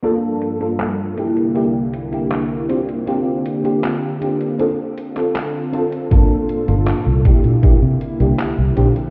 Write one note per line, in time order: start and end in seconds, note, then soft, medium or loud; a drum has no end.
0.03 0.56 A#3 medium
0.03 4.55 A#3 medium
0.03 0.56 D4 medium
0.03 0.56 F4 medium
0.03 0.56 A4 loud
0.03 closed hi-hat medium
0.42 closed hi-hat medium
0.60 1.13 A#3 medium
0.60 1.13 D4 medium
0.60 1.13 F4 medium
0.60 1.13 A4 medium
0.60 closed hi-hat medium
0.80 clap loud
0.80 closed hi-hat medium
1.17 2.68 C2 medium
1.17 2.68 D3 medium
1.17 1.51 A#3 medium
1.17 1.51 D4 medium
1.17 2.68 E4 medium
1.17 1.51 E4 medium
1.17 1.51 G4 medium
1.17 closed hi-hat medium
1.37 closed hi-hat medium
1.54 1.65 A#3 medium
1.54 1.65 D4 medium
1.54 1.65 E4 medium
1.54 1.65 G4 medium
1.54 closed hi-hat medium
1.94 closed hi-hat medium
2.12 2.64 A#3 medium
2.12 2.65 D4 medium
2.12 2.65 E4 medium
2.12 2.65 G4 medium
2.12 closed hi-hat medium
2.31 clap loud
2.31 closed hi-hat medium
2.69 4.57 D3 medium
2.69 2.79 C4 medium
2.69 2.79 D4 medium
2.69 2.79 F4 medium
2.69 4.57 G4 medium
2.69 2.79 G4 medium
2.69 closed hi-hat medium
2.89 closed hi-hat medium
3.06 3.59 C4 medium
3.06 3.60 D4 medium
3.06 3.60 F4 medium
3.06 3.60 G4 loud
3.06 closed hi-hat medium
3.46 closed hi-hat medium
3.63 4.16 C4 medium
3.63 4.17 D4 medium
3.63 4.17 F4 medium
3.63 4.17 G4 medium
3.63 closed hi-hat medium
3.84 clap loud
3.84 closed hi-hat medium
4.20 4.54 C4 medium
4.20 4.54 D4 medium
4.20 4.55 F4 medium
4.20 4.55 G4 medium
4.20 closed hi-hat medium
4.41 closed hi-hat medium
4.59 6.10 D3 medium
4.59 4.69 C4 medium
4.59 6.10 C4 medium
4.59 4.69 D4 medium
4.59 4.69 F4 medium
4.59 6.10 F4 medium
4.59 4.69 A4 medium
4.59 closed hi-hat medium
4.98 closed hi-hat medium
5.16 5.69 C4 medium
5.16 5.69 D4 medium
5.16 5.69 F4 medium
5.16 5.69 A4 medium
5.16 clap soft
5.16 closed hi-hat medium
5.36 clap loud
5.36 closed hi-hat medium
5.72 5.82 C4 medium
5.72 5.83 D4 medium
5.72 5.83 F4 medium
5.72 5.83 A4 loud
5.72 closed hi-hat medium
5.92 closed hi-hat medium
6.11 6.23 G1 medium
6.11 6.63 A#3 medium
6.11 6.64 D4 medium
6.11 6.64 F4 medium
6.11 6.64 A4 loud
6.11 kick loud
6.11 closed hi-hat medium
6.49 closed hi-hat medium
6.67 6.91 G1 medium
6.67 7.20 A#3 medium
6.67 7.21 D4 medium
6.67 7.21 F4 medium
6.67 7.21 A4 medium
6.67 closed hi-hat medium
6.87 clap loud
6.87 closed hi-hat medium
7.06 7.29 C2 medium
7.25 9.10 D3 medium
7.25 7.58 A#3 medium
7.25 8.76 A#3 medium
7.25 7.59 D4 medium
7.25 7.59 E4 medium
7.25 8.76 E4 medium
7.25 7.59 G4 medium
7.25 kick loud
7.25 closed hi-hat medium
7.44 7.56 A#2 medium
7.44 closed hi-hat soft
7.62 7.72 A#3 medium
7.62 7.73 D4 medium
7.62 7.73 E4 medium
7.62 7.73 G4 medium
7.62 muted fingered electric bass stroke soft
7.62 kick loud
7.62 closed hi-hat medium
7.82 7.94 C3 medium
8.01 closed hi-hat medium
8.19 8.32 C2 loud
8.19 8.72 A#3 medium
8.19 8.72 D4 medium
8.19 8.73 E4 medium
8.19 8.73 G4 medium
8.19 closed hi-hat medium
8.39 clap loud
8.39 closed hi-hat medium
8.58 8.70 C2 medium
8.76 8.89 A#1 medium
8.76 9.10 A#3 medium
8.76 8.86 C4 medium
8.76 8.86 D4 medium
8.76 8.87 F4 medium
8.76 8.87 G4 medium
8.76 9.10 G4 medium
8.76 closed hi-hat medium
8.96 closed hi-hat medium